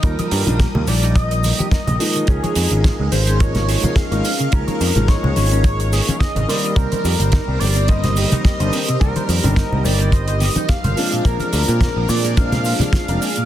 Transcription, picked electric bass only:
X:1
M:4/4
L:1/16
Q:"Swing 16ths" 1/4=107
K:Cm
V:1 name="Picked electric bass" clef=bass
E,, z G,, B,,, z E,, B,,,4 z3 B,,, z2 | _D,, z F,, A,,, z D,, A,,,4 z3 A,,, z2 | _D,, z F,, A,,, z D,, A,,,4 z3 A,,, z2 | C,, z F,, G,,, z C,, G,,,4 z3 G,,, z2 |
C,, z F,, G,,, z C,, G,,,4 z3 G,,, z2 | B,,, z D,, B,, z B,,, B,,4 z3 F,,, z2 |]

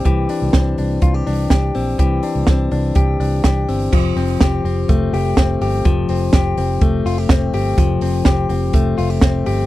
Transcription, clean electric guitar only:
X:1
M:4/4
L:1/16
Q:1/4=124
K:F
V:1 name="Clean electric guitar"
[E,CDG]2 D2 C2 D2 F G D2 G2 C2 | [E,G]2 D2 C2 D2 G2 D2 G2 C2 | F,2 C2 G2 C2 A,2 G2 C2 G2 | F,2 C2 G2 C2 A,2 F G C2 G2 |
F,2 C2 G2 C2 A,2 F G C2 G2 |]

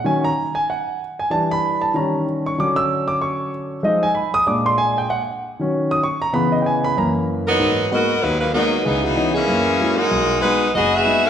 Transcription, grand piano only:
X:1
M:4/4
L:1/8
Q:"Swing" 1/4=191
K:D#phr
V:1 name="Grand piano"
g a2 g f2 z g | =a b2 a ^a2 z c' | =d' e'2 d' c'2 z2 | _e _a _c' _e' =d' =c' g =g |
f z4 d' c' a | b d [=g^g] b a z3 | [K:G#m] z8 | z8 |
z8 |]
V:2 name="Grand piano" clef=bass
[D,F,C] z6 z | [E,=G,=D]4 [^D,G,C]4 | [=D,F,C]8 | [=F,_A,_E] z3 [^A,,G,=D]4 |
z3 [D,F,C]3 z2 | [C,E,B,]4 [F,,E,A,]4 | [K:G#m] G,,2 [G,A,B,F] z D,,2 [G,A,B,F] z | C,,2 [E,B,CD] z [F,,A,]2 [F,G,A,E] z |
B,,,2 [G,B,D] z F,,,2 [G,B,D] z |]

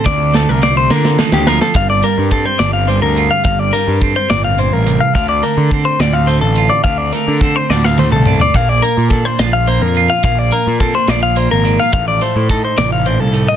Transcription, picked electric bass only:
X:1
M:6/8
L:1/16
Q:3/8=71
K:Gm
V:1 name="Picked electric bass" clef=bass
D,,3 C,,3 D,2 z D,,2 z | G,,,2 z G,,2 z G,,,3 D,,2 z | G,,,2 z G,,2 z G,,,3 A,,,2 z | D,,2 z D,2 z D,,3 A,,,2 z |
D,,2 z D,2 z D,,3 C,,2 z | B,,,2 z B,,2 z B,,,3 F,,2 z | B,,,2 z B,,2 z B,,,3 _A,,,2 z | A,,,2 z A,,2 z A,,,3 C,,2 z |]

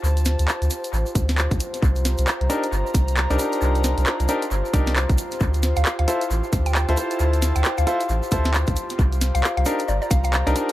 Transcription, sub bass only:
X:1
M:4/4
L:1/16
Q:"Swing 16ths" 1/4=134
K:Dphr
V:1 name="Sub bass" clef=bass
D,,3 D,, z D,, z2 A,,, z D,,3 D,, z2 | C,,3 C,, z C,, z2 G,,, z C,,3 C,, z2 | C,,3 C,, z C,, z2 G,,, z C,,3 C,, z2 | D,,3 D,, z D,, z2 A,,, z D,,3 D,, z2 |
D,,3 D,, z D,, z2 A,,, z D,,3 D,, z2 | C,,3 C,, z C,, z2 G,,, z C,,3 C,, z2 |]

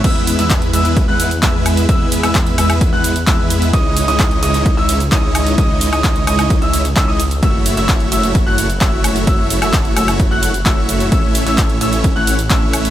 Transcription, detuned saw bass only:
X:1
M:4/4
L:1/16
Q:1/4=130
K:C#m
V:1 name="Detuned saw bass" clef=bass
E,,3 E,,3 E,,3 E,,3 E,,4 | E,,3 E,,3 E,,3 E,,3 E,,4 | C,,3 C,,3 C,,3 C,,3 C,,4 | C,,3 C,,3 C,,3 C,,3 C,, C,,3 |
F,,,3 F,,,3 F,,,3 F,,,3 F,,,4 | F,,,3 F,,,3 F,,,3 F,,,3 F,,,4 | A,,,3 A,,,3 A,,,3 A,,,3 A,,,4 |]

